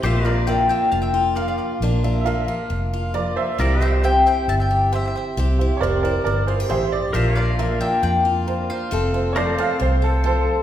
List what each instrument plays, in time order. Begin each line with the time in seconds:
Already playing: upright piano C5
0.03 fingered electric bass A#1, steel-string acoustic guitar A#2 A#3 D4 F4, pedal steel guitar G4 C5 E5
0.24 steel-string acoustic guitar D4, honky-tonk piano F4 A#4 D5, mandolin D5 F5
0.29 pedal steel guitar F4 A#4 D5
0.47 steel-string acoustic guitar F3 A#3, honky-tonk piano F4 A#4 E5, mandolin D5 G5
0.69 steel-string acoustic guitar D4, mandolin E5 G5
0.92 fingered electric bass F1, steel-string acoustic guitar F2, mandolin F5 A5
1.02 mandolin E5 G5
1.14 steel-string acoustic guitar F4
1.35 steel-string acoustic guitar F3, honky-tonk piano F4 A#4 F5, mandolin D5 F5
1.48 mandolin D5 F5
1.58 mandolin D5 F5
1.81 fingered electric bass A#1, steel-string acoustic guitar A#2 A#3 D4 F4
2.03 steel-string acoustic guitar D4, honky-tonk piano F4 A#4 E5
2.21 honky-tonk piano F4, upright piano E5
2.25 steel-string acoustic guitar F3 A#3, honky-tonk piano A#4 E5, upright piano F5
2.48 steel-string acoustic guitar D4
2.70 fingered electric bass F1, steel-string acoustic guitar F2
2.93 steel-string acoustic guitar F4
3.14 steel-string acoustic guitar F3, honky-tonk piano F4 A#4 D5, upright piano D5
3.36 upright piano C5 E5
3.58 fingered electric bass C2, steel-string acoustic guitar C3 C4 E4 G4, pedal steel guitar F4 A#4 D5
3.81 steel-string acoustic guitar E4, honky-tonk piano G4 C5 E5, mandolin C5 E5
3.85 pedal steel guitar G4 C5 E5
4.03 steel-string acoustic guitar E3 C4, honky-tonk piano G4 C5 E5, mandolin E5 G5
4.26 steel-string acoustic guitar E4, mandolin E5 G5
4.48 fingered electric bass G1, steel-string acoustic guitar G2, mandolin E5 A5
4.60 mandolin E5 G5
4.71 steel-string acoustic guitar G4
4.92 steel-string acoustic guitar E3, honky-tonk piano G4 C5 G5, mandolin C5 E5
5.06 mandolin C5 E5
5.16 mandolin C5 E5
5.37 fingered electric bass C2, steel-string acoustic guitar C3 C4 E4 G4
5.58 steel-string acoustic guitar E4, honky-tonk piano G4 C5 E5
5.77 honky-tonk piano G4 C5 D5, upright piano A#4 C#5
5.81 fingered electric bass F1, steel-string acoustic guitar E3 C4, upright piano D5
6.03 steel-string acoustic guitar E4, upright piano A#4 D5
6.24 fingered electric bass G1, steel-string acoustic guitar G2, upright piano A#4 D5
6.47 steel-string acoustic guitar F4, upright piano G#4 C5
6.60 steel-string acoustic guitar G4
6.69 fingered electric bass A1, steel-string acoustic guitar E3, honky-tonk piano G4 C5 E5, upright piano G#4 C5
6.92 upright piano D5
7.13 fingered electric bass A#1, steel-string acoustic guitar A#2 A#3 D4 F4, pedal steel guitar A#4 C5 E5
7.35 steel-string acoustic guitar D4, honky-tonk piano F4 A#4 D5, mandolin D5 F5, pedal steel guitar F5
7.40 pedal steel guitar D5
7.58 steel-string acoustic guitar F3 A#3, honky-tonk piano F4 A#4 E5
7.81 steel-string acoustic guitar D4, mandolin E5 G5
8.03 steel-string acoustic guitar F2, fingered electric bass F2, mandolin D5 G5
8.25 steel-string acoustic guitar F4
8.46 steel-string acoustic guitar F3, honky-tonk piano F4 A#4 C5
8.70 mandolin C5 F5
8.91 fingered electric bass F1, steel-string acoustic guitar F2 A3 C4 A4
9.13 steel-string acoustic guitar C4, honky-tonk piano F4 A4 C5
9.33 steel-string acoustic guitar F3, honky-tonk piano F4 A4 D5, pedal steel guitar A#4, upright piano C#5
9.37 steel-string acoustic guitar A3, pedal steel guitar C5 F5, upright piano D5
9.56 steel-string acoustic guitar C4, pedal steel guitar A4, upright piano F5
9.79 fingered electric bass C2, steel-string acoustic guitar C3, upright piano C5
10.02 steel-string acoustic guitar A4, upright piano A4
10.24 steel-string acoustic guitar F3, honky-tonk piano F4 A4 C5, upright piano A4